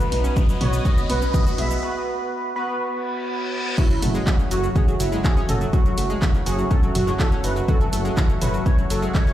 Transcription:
Already playing: analog polysynth B3 F#4 B4, analog synth lead B4, analog synth pad B4 D#5 F#5 D#6, riser
0.00 synth pluck B3, shaker
0.12 detuned saw bass B1, synth pluck D#4, open hi-hat, mid tom
0.24 synth pluck C#4, shaker
0.36 synth pluck A3, kick, mid tom, shaker
0.49 synth pluck F#3, shaker
0.61 detuned saw bass B1, synth pluck B3, analog polysynth B3 F#4 B4, analog synth lead C#5, mid tom, open hi-hat
0.73 synth pluck B3, shaker
0.85 synth pluck F#4, analog synth lead D#5, kick, mid tom, shaker
0.97 synth pluck B3, shaker
1.09 detuned saw bass B1, synth pluck B3, analog synth lead B4, open hi-hat, mid tom
1.22 synth pluck C#4, shaker
1.34 synth pluck A3, analog synth lead D#5, kick, mid tom, shaker
1.46 synth pluck F#4, shaker
1.58 detuned saw bass B1, synth pluck G#4, analog synth lead E5, open hi-hat, mid tom
1.71 synth pluck B3, shaker
1.83 analog polysynth B3 F#4 B4
2.56 analog polysynth B3 F#4 B4
2.80 reverse cymbal
3.78 analog polysynth F#3 C#4 F#4, synth pluck F#3 F#4, analog synth lead E4, analog synth pad A4 E5 F#5 C#6, kick, crash, shaker
3.90 synth pluck F#3 F#4, shaker
4.02 detuned saw bass F#1, synth pluck A3 A4, mid tom, open hi-hat, shaker
4.15 synth pluck G#3 G#4, shaker
4.27 synth pluck E3 E4, kick, clap, shaker
4.39 synth pluck C#3 C#4, shaker
4.51 detuned saw bass F#1, analog polysynth F#3 C#4 F#4, synth pluck F#3 F#4, analog synth lead F#4, open hi-hat, shaker
4.63 synth pluck F#3 F#4, shaker
4.76 synth pluck C#4 C#5, analog synth lead G#4, kick, mid tom, shaker
4.88 synth pluck F#3 F#4, shaker
5.00 detuned saw bass F#1, synth pluck F#3 F#4, analog synth lead E4, open hi-hat, shaker
5.12 synth pluck G#3 G#4, shaker
5.24 synth pluck E3 E4, analog synth lead G#4, kick, clap, shaker
5.37 synth pluck C#4 C#5, shaker
5.48 detuned saw bass F#1, synth pluck D#4 D#5, analog synth lead A4, mid tom, open hi-hat, shaker
5.61 synth pluck F#3 F#4, shaker
5.73 analog polysynth F#3 C#4 F#4, synth pluck F#3 F#4, analog synth lead F#4, kick, shaker
5.85 synth pluck F#3 F#4, shaker
5.98 detuned saw bass F#1, synth pluck A3 A4, open hi-hat, shaker
6.10 synth pluck G#3 G#4, shaker
6.22 synth pluck E3 E4, kick, clap, mid tom, shaker
6.34 synth pluck C#3 C#4, shaker
6.46 detuned saw bass F#1, synth pluck F#3 F#4, analog polysynth F#3 C#4 F#4, analog synth lead G#4, open hi-hat, shaker
6.59 synth pluck F#3 F#4, shaker
6.71 synth pluck C#4 C#5, analog synth lead A4, kick, shaker
6.83 synth pluck F#3 F#4, shaker
6.95 detuned saw bass F#1, synth pluck F#3 F#4, analog synth lead F#4, mid tom, open hi-hat, shaker
7.07 synth pluck G#3 G#4, clap, shaker
7.19 synth pluck E3 E4, analog synth lead A4, kick, clap, shaker
7.32 synth pluck C#4 C#5, shaker
7.44 detuned saw bass F#1, synth pluck D#4 D#5, analog synth lead B4, open hi-hat, shaker
7.56 synth pluck F#3 F#4, shaker
7.68 analog polysynth F#3 C#4 F#4, synth pluck F#3 F#4, analog synth lead A4, kick, mid tom, shaker
7.81 synth pluck F#3 F#4, shaker
7.93 detuned saw bass F#1, synth pluck A3 A4, open hi-hat, shaker
8.05 synth pluck G#3 G#4, shaker
8.17 synth pluck E3 E4, kick, clap, shaker
8.29 synth pluck C#3 C#4, shaker
8.41 detuned saw bass F#1, synth pluck F#3 F#4, analog polysynth F#3 C#4 F#4, analog synth lead B4, mid tom, open hi-hat, shaker
8.54 synth pluck F#3 F#4, shaker
8.66 synth pluck C#4 C#5, analog synth lead C#5, kick, shaker
8.78 synth pluck F#3 F#4, shaker
8.90 detuned saw bass F#1, synth pluck F#3 F#4, analog synth lead A4, open hi-hat, shaker
9.02 synth pluck G#3 G#4, shaker
9.14 synth pluck E3 E4, analog synth lead C#5, kick, clap, mid tom, shaker
9.27 synth pluck C#4 C#5, shaker

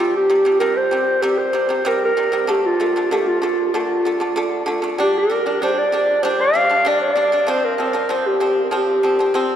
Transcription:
Already playing: pipa C3
0.00 pipa G3, clarinet F4
0.17 clarinet G4
0.30 pipa C3 G3
0.45 pipa C3 G3
0.60 pipa C3 G3, clarinet A#4
0.77 clarinet C5
0.91 pipa C3 G3
1.22 pipa C3 G3, clarinet G4
1.39 clarinet C5
1.53 pipa C3 G3
1.69 pipa C3 G3
1.85 pipa C3 G3, clarinet A#4
2.05 clarinet A#4
2.17 pipa C3 G3
2.32 pipa C3 G3
2.47 pipa D3 A3, clarinet G4
2.66 clarinet F4
2.80 pipa D3 A3
2.96 pipa D3 A3
3.11 pipa D3 A3, clarinet G4
3.28 clarinet F4
3.42 pipa D3 A3
3.74 pipa D3 A3, clarinet F4
4.05 pipa D3 A3
4.20 pipa D3 A3
4.36 pipa D3 A3
4.66 pipa D3 A3
4.82 pipa D3 A3
4.98 pipa G3 D4, clarinet G4
5.18 clarinet A#4
5.30 pipa G3 D4
5.46 pipa G3 D4
5.62 pipa G3 D4, clarinet C5
5.79 clarinet D5
5.92 pipa G3 D4
6.23 pipa G3 D4, clarinet C5
6.41 clarinet F5
6.54 pipa G3 D4
6.69 pipa G3 D4
6.85 pipa G3 D4, clarinet D5
7.01 clarinet D5
7.16 pipa G3 D4
7.32 pipa G3 D4
7.47 pipa F3 C4, clarinet C5
7.65 clarinet A#4
7.78 pipa F3 C4
7.93 pipa F3 C4
8.09 pipa F3 C4, clarinet C5
8.27 clarinet G4
8.40 pipa F3 C4
8.65 clarinet A#4
8.71 pipa F3 C4
8.75 clarinet G4
9.03 pipa F3 C4
9.19 pipa F3 C4
9.34 pipa F3 C4

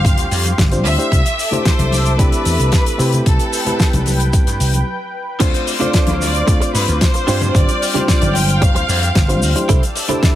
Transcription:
Already playing: reed electric piano G3 C4 D4 F4 C5, analog synth pad G4 F5 C6, violin section F5
0.05 slap bass G1, kick, closed hi-hat, shaker
0.18 slap bass D2, closed hi-hat, shaker
0.31 slap bass F2, open hi-hat, shaker
0.45 closed hi-hat, high conga, shaker
0.58 slap bass G1, kick, snare, closed hi-hat, shaker
0.71 reed electric piano G3 C4 D4 F4 C5, closed hi-hat, shaker
0.85 slap bass D2, violin section E5, open hi-hat, shaker
0.98 reed electric piano A3 D4 E4 G4 C5, closed hi-hat, shaker
1.12 slap bass C2, analog synth pad A4 E5 D6, kick, closed hi-hat, shaker
1.26 closed hi-hat, shaker
1.39 open hi-hat, shaker
1.51 reed electric piano A3 D4 E4 G4 C5, closed hi-hat, low conga, shaker
1.65 violin section C5, kick, snare, closed hi-hat, shaker
1.79 slap bass C2, closed hi-hat, high conga, shaker
1.92 open hi-hat, high conga, shaker
2.06 closed hi-hat, shaker
2.18 slap bass C2, reed electric piano A3 C4 D4 E4 G4, violin section B4, kick, closed hi-hat, shaker
2.32 closed hi-hat, shaker
2.45 slap bass E2, open hi-hat, shaker
2.59 slap bass C2, closed hi-hat, shaker
2.72 kick, snare, closed hi-hat, shaker
2.86 closed hi-hat, shaker
2.98 slap bass C3, reed electric piano A3 C4 E4 G4 B4, analog synth pad B4 G5, open hi-hat, shaker
3.12 closed hi-hat, low conga, shaker
3.26 slap bass C2, violin section A4, kick, closed hi-hat, shaker
3.40 closed hi-hat, shaker
3.53 open hi-hat, shaker
3.65 reed electric piano A3 C4 E4 G4 B4, closed hi-hat, low conga, shaker
3.80 kick, snare, closed hi-hat, shaker
3.93 slap bass C2, closed hi-hat, high conga, shaker
4.06 open hi-hat, high conga, shaker
4.20 closed hi-hat, shaker
4.33 slap bass C2, kick, closed hi-hat, shaker
4.47 slap bass G2, closed hi-hat, shaker
4.60 slap bass C2, open hi-hat, shaker
4.73 closed hi-hat, high conga, shaker
5.39 slap bass D2, reed electric piano A3 C4 D4 F4 C5, clean electric guitar D4 F4 A4 C5, analog synth pad C5 F5 D6, violin section C5, kick, closed hi-hat, crash, shaker
5.54 closed hi-hat, shaker
5.66 muted clean electric guitar stroke, open hi-hat, shaker
5.79 reed electric piano A3 C4 D4 F4 C5, clean electric guitar D4 F4 A4 D5, closed hi-hat, low conga, shaker
5.93 kick, snare, closed hi-hat, shaker
6.07 slap bass D2, closed hi-hat, high conga, shaker
6.21 violin section D5, open hi-hat, high conga, shaker
6.35 closed hi-hat, shaker
6.46 slap bass D2, reed electric piano A3 C4 D4 F4, muted clean electric guitar stroke, kick, closed hi-hat, shaker
6.60 muted clean electric guitar stroke, closed hi-hat, shaker
6.74 slap bass G2, violin section B4, muted clean electric guitar stroke, open hi-hat, shaker
6.88 slap bass D2, closed hi-hat, shaker
7.01 violin section C5, kick, snare, closed hi-hat, shaker
7.14 muted clean electric guitar stroke, closed hi-hat, shaker
7.27 slap bass G2, reed electric piano G3 C4 D4 F4 C5, clean electric guitar D4 F4 G4 C5, analog synth pad G5 F6, open hi-hat, shaker
7.41 closed hi-hat, high conga, low conga, shaker
7.55 slap bass G1, violin section D5, kick, closed hi-hat, shaker
7.69 closed hi-hat, shaker
7.81 muted clean electric guitar stroke, open hi-hat, shaker
7.94 reed electric piano G3 C4 D4 F4 C5, clean electric guitar D4 F4 G4 C5, closed hi-hat, low conga, shaker
8.08 violin section D5, kick, snare, closed hi-hat, shaker
8.22 slap bass G1, closed hi-hat, high conga, shaker
8.34 violin section G5, open hi-hat, high conga, shaker
8.49 closed hi-hat, shaker
8.61 slap bass G1, violin section F5, muted clean electric guitar stroke, kick, closed hi-hat, shaker
8.75 slap bass D2, muted clean electric guitar stroke, closed hi-hat, shaker
8.88 slap bass F2, muted clean electric guitar stroke, open hi-hat, shaker
9.03 closed hi-hat, shaker
9.15 slap bass G1, kick, snare, closed hi-hat, shaker
9.28 reed electric piano G3 C4 D4 F4 C5, muted clean electric guitar stroke, closed hi-hat, shaker
9.42 slap bass D2, open hi-hat, shaker
9.55 reed electric piano A3 D4 E4 G4 C5, closed hi-hat, high conga, shaker
9.69 slap bass C2, clean electric guitar D4 E4 A4 C5, analog synth pad D5 A5 E6, kick, closed hi-hat, shaker
9.83 closed hi-hat, shaker
9.95 muted clean electric guitar stroke, open hi-hat, shaker
10.08 reed electric piano A3 D4 E4 G4 C5, clean electric guitar D4 E4 A4 C5, closed hi-hat, low conga, shaker
10.23 kick, snare, closed hi-hat, shaker

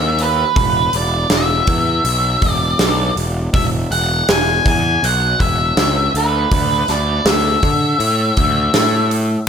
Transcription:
Already playing: picked electric bass D#2, lead electric guitar E5
0.19 lead electric guitar B4, open hi-hat
0.56 picked electric bass E1, kick, open hi-hat
0.93 picked electric bass E1, lead electric guitar D5, open hi-hat
1.30 picked electric bass E1, lead electric guitar E5, snare, open hi-hat
1.67 picked electric bass E2, kick, open hi-hat
2.05 picked electric bass B1, open hi-hat
2.42 picked electric bass E1, kick, open hi-hat
2.52 lead electric guitar D5
2.79 picked electric bass B1, snare, open hi-hat
3.16 picked electric bass E1, open hi-hat
3.54 picked electric bass E1, lead electric guitar E5, kick, open hi-hat
3.91 picked electric bass E1, lead electric guitar F#5, open hi-hat
4.29 picked electric bass E1, lead electric guitar G#5, snare, open hi-hat
4.66 picked electric bass E2, lead electric guitar G#5, kick, open hi-hat
5.03 picked electric bass B1, lead electric guitar F#5, open hi-hat
5.40 picked electric bass E1, lead electric guitar E5, kick, open hi-hat
5.77 picked electric bass C#2, snare, open hi-hat
6.14 picked electric bass D2, lead electric guitar B4, open hi-hat
6.51 picked electric bass D2, kick, open hi-hat
6.88 picked electric bass D2, lead electric guitar D5, snare, open hi-hat
7.25 picked electric bass D2, lead electric guitar E5, snare, open hi-hat
7.63 picked electric bass D3, kick, open hi-hat
8.00 picked electric bass A2, open hi-hat
8.37 picked electric bass D2, kick, open hi-hat
8.74 picked electric bass A2, snare, open hi-hat
9.11 open hi-hat

